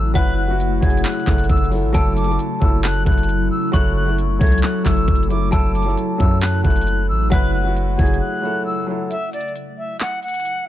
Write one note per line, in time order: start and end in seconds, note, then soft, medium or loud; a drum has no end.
0.00 0.14 A1 loud
0.00 5.49 C#3 medium
0.00 0.14 F#3 loud
0.00 1.91 F#3 medium
0.00 5.49 A3 medium
0.00 0.15 E4 medium
0.00 5.49 E4 medium
0.00 1.29 A4 loud
0.00 0.12 E6 medium
0.14 0.80 F#1 loud
0.14 0.40 F#3 loud
0.14 0.41 E4 loud
0.14 0.42 B4 loud
0.14 1.90 F#5 medium
0.14 0.35 F#6 loud
0.14 kick loud
0.14 closed hi-hat medium
0.38 0.57 F#6 medium
0.47 0.74 F#3 medium
0.47 0.75 E4 medium
0.47 0.76 F#4 medium
0.60 closed hi-hat medium
0.81 1.04 F#1 loud
0.81 1.16 F#3 medium
0.81 1.17 E4 medium
0.81 1.18 G#4 medium
0.81 1.02 G#6 medium
0.81 kick loud
0.81 closed hi-hat medium
0.90 closed hi-hat medium
0.97 closed hi-hat medium
1.04 1.47 F#6 medium
1.04 clap loud
1.04 closed hi-hat medium
1.12 closed hi-hat medium
1.20 closed hi-hat medium
1.26 1.49 F#1 loud
1.26 1.61 F#3 medium
1.26 1.62 E4 medium
1.26 1.63 A4 medium
1.26 kick loud
1.26 clap loud
1.26 closed hi-hat soft
1.33 closed hi-hat medium
1.38 closed hi-hat medium
1.44 closed hi-hat medium
1.49 1.85 F#1 loud
1.49 1.69 E6 medium
1.49 kick loud
1.49 closed hi-hat medium
1.57 closed hi-hat medium
1.65 closed hi-hat soft
1.70 1.89 F#3 medium
1.70 1.89 E4 medium
1.70 1.90 A4 medium
1.70 open hi-hat medium
1.83 1.94 A1 loud
1.93 2.37 F#1 loud
1.93 2.19 F#3 loud
1.93 9.07 F#3 medium
1.93 2.20 E4 medium
1.93 2.21 A4 loud
1.93 3.25 A5 loud
1.93 2.13 E6 medium
1.93 kick loud
1.93 closed hi-hat medium
2.17 2.36 D6 medium
2.17 closed hi-hat medium
2.24 2.53 F#3 medium
2.24 2.54 E4 medium
2.24 closed hi-hat medium
2.30 2.55 A4 medium
2.30 closed hi-hat soft
2.39 closed hi-hat medium
2.60 3.05 F#1 loud
2.60 2.95 F#3 medium
2.60 2.96 E4 medium
2.60 2.97 A4 medium
2.60 2.81 E6 medium
2.60 kick loud
2.84 3.03 F#6 medium
2.84 clap loud
2.84 closed hi-hat medium
3.05 3.49 F#1 loud
3.05 3.57 F#3 medium
3.05 3.58 E4 medium
3.05 3.59 A4 medium
3.05 3.49 F#6 medium
3.05 kick loud
3.05 closed hi-hat medium
3.12 closed hi-hat medium
3.18 closed hi-hat medium
3.23 closed hi-hat medium
3.29 closed hi-hat medium
3.51 3.70 E6 medium
3.72 4.38 F#1 loud
3.72 3.99 F#3 loud
3.72 3.99 E4 medium
3.72 4.00 A4 loud
3.72 5.04 C#6 loud
3.72 3.93 F#6 loud
3.72 kick loud
3.72 closed hi-hat medium
3.96 4.15 F#6 medium
4.05 4.32 F#3 medium
4.05 4.33 E4 medium
4.05 4.34 A4 medium
4.18 closed hi-hat medium
4.39 4.62 C#2 loud
4.39 4.74 F#3 medium
4.39 4.75 E4 medium
4.39 4.76 A4 medium
4.39 4.60 G#6 medium
4.39 kick loud
4.39 closed hi-hat soft
4.47 closed hi-hat medium
4.52 closed hi-hat medium
4.58 closed hi-hat medium
4.63 4.83 F#6 medium
4.63 clap loud
4.63 closed hi-hat medium
4.84 5.07 F#1 loud
4.84 5.19 F#3 medium
4.84 5.20 E4 medium
4.84 5.21 A4 medium
4.84 5.27 E6 medium
4.84 kick loud
4.84 clap loud
4.84 closed hi-hat medium
4.97 closed hi-hat soft
5.08 5.51 F#1 loud
5.08 kick medium
5.08 closed hi-hat soft
5.15 closed hi-hat medium
5.23 closed hi-hat medium
5.29 5.47 F#3 medium
5.29 5.48 E4 medium
5.29 5.48 A4 medium
5.29 5.50 D6 medium
5.29 closed hi-hat medium
5.51 5.96 F#1 loud
5.51 9.07 C#3 medium
5.51 5.78 F#3 loud
5.51 9.07 A3 medium
5.51 5.79 E4 medium
5.51 9.07 E4 medium
5.51 5.79 A4 loud
5.51 6.83 A5 loud
5.51 5.72 E6 medium
5.51 kick loud
5.51 closed hi-hat medium
5.75 5.94 D6 medium
5.75 closed hi-hat medium
5.83 6.11 F#3 medium
5.83 6.12 E4 medium
5.83 closed hi-hat medium
5.88 6.13 A4 medium
5.88 closed hi-hat soft
5.98 closed hi-hat medium
6.18 6.63 F#2 loud
6.18 6.53 F#3 medium
6.18 6.54 E4 medium
6.18 6.55 A4 medium
6.18 6.39 E6 medium
6.18 kick loud
6.42 6.61 F#6 medium
6.42 clap loud
6.42 closed hi-hat medium
6.63 7.11 F#1 loud
6.63 7.16 F#3 medium
6.63 7.17 E4 medium
6.63 7.17 A4 medium
6.63 7.06 F#6 medium
6.63 kick loud
6.63 closed hi-hat soft
6.70 closed hi-hat medium
6.76 closed hi-hat medium
6.82 closed hi-hat medium
6.87 closed hi-hat medium
7.09 7.31 A1 loud
7.09 7.29 E6 medium
7.30 7.96 F#1 loud
7.30 7.57 F#3 loud
7.30 7.58 E4 loud
7.30 7.58 B4 loud
7.30 9.07 F#5 medium
7.30 7.51 F#6 loud
7.30 kick loud
7.30 closed hi-hat medium
7.54 7.73 F#6 medium
7.64 7.90 F#3 medium
7.64 7.91 E4 medium
7.64 7.92 F#4 medium
7.77 closed hi-hat medium
7.97 8.20 F#1 loud
7.97 8.33 F#3 medium
7.97 8.33 E4 medium
7.97 8.34 G#4 medium
7.97 8.18 G#6 medium
7.97 kick loud
7.97 closed hi-hat medium
8.06 closed hi-hat medium
8.14 closed hi-hat medium
8.21 8.63 F#6 medium
8.42 8.77 F#3 medium
8.42 8.78 E4 medium
8.42 8.79 A4 medium
8.66 8.85 E6 medium
8.87 9.05 F#3 medium
8.87 9.06 E4 medium
8.87 9.07 A4 medium
9.10 9.30 E5 medium
9.10 closed hi-hat medium
9.33 9.53 D5 medium
9.33 closed hi-hat medium
9.41 closed hi-hat medium
9.48 closed hi-hat soft
9.56 closed hi-hat medium
9.78 9.97 E5 medium
10.00 10.20 F#5 medium
10.00 clap loud
10.00 closed hi-hat medium
10.23 10.65 F#5 medium
10.23 closed hi-hat soft
10.28 closed hi-hat medium
10.34 closed hi-hat medium
10.40 closed hi-hat medium
10.45 closed hi-hat medium